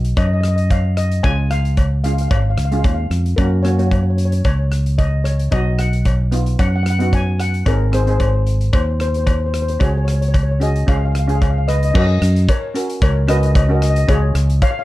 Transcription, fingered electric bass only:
0, 0, Header, 1, 2, 480
1, 0, Start_track
1, 0, Key_signature, 6, "major"
1, 0, Tempo, 535236
1, 1111, Time_signature, 4, 2, 24, 8
1, 13309, End_track
2, 0, Start_track
2, 0, Title_t, "Fingered electric bass"
2, 0, Program_c, 0, 33
2, 0, Note_on_c, 0, 35, 91
2, 117, Note_off_c, 0, 35, 0
2, 153, Note_on_c, 0, 42, 79
2, 1076, Note_off_c, 0, 42, 0
2, 1112, Note_on_c, 0, 37, 90
2, 2035, Note_off_c, 0, 37, 0
2, 2070, Note_on_c, 0, 32, 74
2, 2294, Note_off_c, 0, 32, 0
2, 2305, Note_on_c, 0, 37, 64
2, 2524, Note_off_c, 0, 37, 0
2, 2550, Note_on_c, 0, 39, 65
2, 2766, Note_off_c, 0, 39, 0
2, 2784, Note_on_c, 0, 41, 67
2, 3003, Note_off_c, 0, 41, 0
2, 3031, Note_on_c, 0, 42, 90
2, 3955, Note_off_c, 0, 42, 0
2, 3990, Note_on_c, 0, 37, 81
2, 4914, Note_off_c, 0, 37, 0
2, 4951, Note_on_c, 0, 35, 91
2, 5876, Note_off_c, 0, 35, 0
2, 5913, Note_on_c, 0, 42, 73
2, 6837, Note_off_c, 0, 42, 0
2, 6871, Note_on_c, 0, 32, 89
2, 7797, Note_off_c, 0, 32, 0
2, 7834, Note_on_c, 0, 39, 80
2, 8759, Note_off_c, 0, 39, 0
2, 8794, Note_on_c, 0, 37, 87
2, 9719, Note_off_c, 0, 37, 0
2, 9755, Note_on_c, 0, 37, 81
2, 10679, Note_off_c, 0, 37, 0
2, 10717, Note_on_c, 0, 42, 87
2, 10939, Note_off_c, 0, 42, 0
2, 10955, Note_on_c, 0, 42, 87
2, 11178, Note_off_c, 0, 42, 0
2, 11674, Note_on_c, 0, 37, 93
2, 12596, Note_off_c, 0, 37, 0
2, 12633, Note_on_c, 0, 37, 91
2, 12854, Note_off_c, 0, 37, 0
2, 12866, Note_on_c, 0, 37, 89
2, 13091, Note_off_c, 0, 37, 0
2, 13309, End_track
0, 0, End_of_file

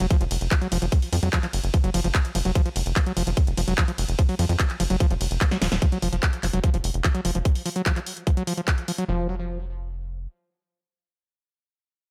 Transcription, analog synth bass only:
0, 0, Header, 1, 2, 480
1, 0, Start_track
1, 0, Tempo, 408163
1, 1084, Time_signature, 4, 2, 24, 8
1, 14235, End_track
2, 0, Start_track
2, 0, Title_t, "Analog synth bass"
2, 0, Program_c, 0, 38
2, 4, Note_on_c, 0, 29, 86
2, 86, Note_off_c, 0, 29, 0
2, 244, Note_on_c, 0, 29, 81
2, 326, Note_off_c, 0, 29, 0
2, 364, Note_on_c, 0, 29, 101
2, 446, Note_off_c, 0, 29, 0
2, 484, Note_on_c, 0, 29, 80
2, 566, Note_off_c, 0, 29, 0
2, 844, Note_on_c, 0, 29, 102
2, 926, Note_off_c, 0, 29, 0
2, 964, Note_on_c, 0, 29, 83
2, 1046, Note_off_c, 0, 29, 0
2, 1324, Note_on_c, 0, 41, 94
2, 1406, Note_off_c, 0, 41, 0
2, 1444, Note_on_c, 0, 41, 81
2, 1526, Note_off_c, 0, 41, 0
2, 1804, Note_on_c, 0, 30, 91
2, 1886, Note_off_c, 0, 30, 0
2, 1924, Note_on_c, 0, 30, 86
2, 2006, Note_off_c, 0, 30, 0
2, 2164, Note_on_c, 0, 30, 77
2, 2246, Note_off_c, 0, 30, 0
2, 2284, Note_on_c, 0, 30, 101
2, 2366, Note_off_c, 0, 30, 0
2, 2404, Note_on_c, 0, 30, 83
2, 2486, Note_off_c, 0, 30, 0
2, 2764, Note_on_c, 0, 29, 100
2, 2846, Note_off_c, 0, 29, 0
2, 2884, Note_on_c, 0, 29, 83
2, 2966, Note_off_c, 0, 29, 0
2, 3244, Note_on_c, 0, 29, 101
2, 3326, Note_off_c, 0, 29, 0
2, 3364, Note_on_c, 0, 29, 86
2, 3446, Note_off_c, 0, 29, 0
2, 3724, Note_on_c, 0, 29, 96
2, 3806, Note_off_c, 0, 29, 0
2, 3844, Note_on_c, 0, 29, 84
2, 3926, Note_off_c, 0, 29, 0
2, 4084, Note_on_c, 0, 29, 79
2, 4166, Note_off_c, 0, 29, 0
2, 4204, Note_on_c, 0, 29, 101
2, 4286, Note_off_c, 0, 29, 0
2, 4324, Note_on_c, 0, 29, 84
2, 4406, Note_off_c, 0, 29, 0
2, 4684, Note_on_c, 0, 29, 99
2, 4766, Note_off_c, 0, 29, 0
2, 4804, Note_on_c, 0, 29, 83
2, 4886, Note_off_c, 0, 29, 0
2, 5164, Note_on_c, 0, 41, 96
2, 5246, Note_off_c, 0, 41, 0
2, 5284, Note_on_c, 0, 41, 83
2, 5366, Note_off_c, 0, 41, 0
2, 5644, Note_on_c, 0, 30, 91
2, 5726, Note_off_c, 0, 30, 0
2, 5764, Note_on_c, 0, 30, 85
2, 5846, Note_off_c, 0, 30, 0
2, 6004, Note_on_c, 0, 29, 79
2, 6086, Note_off_c, 0, 29, 0
2, 6124, Note_on_c, 0, 29, 95
2, 6206, Note_off_c, 0, 29, 0
2, 6244, Note_on_c, 0, 29, 85
2, 6326, Note_off_c, 0, 29, 0
2, 6604, Note_on_c, 0, 27, 102
2, 6686, Note_off_c, 0, 27, 0
2, 6724, Note_on_c, 0, 27, 86
2, 6806, Note_off_c, 0, 27, 0
2, 7084, Note_on_c, 0, 29, 95
2, 7166, Note_off_c, 0, 29, 0
2, 7204, Note_on_c, 0, 29, 81
2, 7286, Note_off_c, 0, 29, 0
2, 7564, Note_on_c, 0, 29, 94
2, 7646, Note_off_c, 0, 29, 0
2, 7684, Note_on_c, 0, 29, 84
2, 7766, Note_off_c, 0, 29, 0
2, 7924, Note_on_c, 0, 29, 76
2, 8006, Note_off_c, 0, 29, 0
2, 8044, Note_on_c, 0, 29, 99
2, 8126, Note_off_c, 0, 29, 0
2, 8164, Note_on_c, 0, 29, 81
2, 8246, Note_off_c, 0, 29, 0
2, 8524, Note_on_c, 0, 29, 101
2, 8606, Note_off_c, 0, 29, 0
2, 8645, Note_on_c, 0, 29, 80
2, 8726, Note_off_c, 0, 29, 0
2, 10684, Note_on_c, 0, 29, 94
2, 12077, Note_off_c, 0, 29, 0
2, 14235, End_track
0, 0, End_of_file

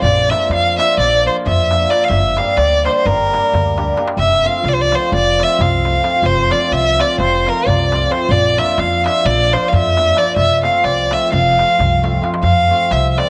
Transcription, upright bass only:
0, 0, Header, 1, 2, 480
1, 0, Start_track
1, 0, Key_signature, -1, "major"
1, 0, Tempo, 459067
1, 27, Time_signature, 9, 3, 24, 8
1, 13896, End_track
2, 0, Start_track
2, 0, Title_t, "Upright bass"
2, 0, Program_c, 0, 32
2, 22, Note_on_c, 0, 34, 92
2, 324, Note_off_c, 0, 34, 0
2, 514, Note_on_c, 0, 41, 70
2, 818, Note_off_c, 0, 41, 0
2, 1020, Note_on_c, 0, 34, 77
2, 1323, Note_off_c, 0, 34, 0
2, 1526, Note_on_c, 0, 41, 90
2, 1925, Note_off_c, 0, 41, 0
2, 2193, Note_on_c, 0, 31, 84
2, 2493, Note_off_c, 0, 31, 0
2, 2690, Note_on_c, 0, 38, 75
2, 2991, Note_off_c, 0, 38, 0
2, 3195, Note_on_c, 0, 31, 81
2, 3495, Note_off_c, 0, 31, 0
2, 3695, Note_on_c, 0, 38, 85
2, 4092, Note_off_c, 0, 38, 0
2, 4359, Note_on_c, 0, 29, 77
2, 4658, Note_off_c, 0, 29, 0
2, 4848, Note_on_c, 0, 36, 72
2, 5151, Note_off_c, 0, 36, 0
2, 5354, Note_on_c, 0, 29, 91
2, 5655, Note_off_c, 0, 29, 0
2, 5843, Note_on_c, 0, 36, 85
2, 6245, Note_off_c, 0, 36, 0
2, 6506, Note_on_c, 0, 29, 85
2, 6810, Note_off_c, 0, 29, 0
2, 7020, Note_on_c, 0, 36, 69
2, 7319, Note_off_c, 0, 36, 0
2, 7511, Note_on_c, 0, 29, 94
2, 7813, Note_off_c, 0, 29, 0
2, 8015, Note_on_c, 0, 36, 87
2, 8413, Note_off_c, 0, 36, 0
2, 8667, Note_on_c, 0, 34, 90
2, 8970, Note_off_c, 0, 34, 0
2, 9179, Note_on_c, 0, 41, 74
2, 9478, Note_off_c, 0, 41, 0
2, 9675, Note_on_c, 0, 34, 107
2, 9975, Note_off_c, 0, 34, 0
2, 10171, Note_on_c, 0, 41, 100
2, 10569, Note_off_c, 0, 41, 0
2, 10836, Note_on_c, 0, 29, 83
2, 11135, Note_off_c, 0, 29, 0
2, 11336, Note_on_c, 0, 36, 59
2, 11635, Note_off_c, 0, 36, 0
2, 11842, Note_on_c, 0, 29, 95
2, 12139, Note_off_c, 0, 29, 0
2, 12329, Note_on_c, 0, 36, 82
2, 12726, Note_off_c, 0, 36, 0
2, 12992, Note_on_c, 0, 41, 87
2, 13291, Note_off_c, 0, 41, 0
2, 13500, Note_on_c, 0, 36, 75
2, 13796, Note_off_c, 0, 36, 0
2, 13896, End_track
0, 0, End_of_file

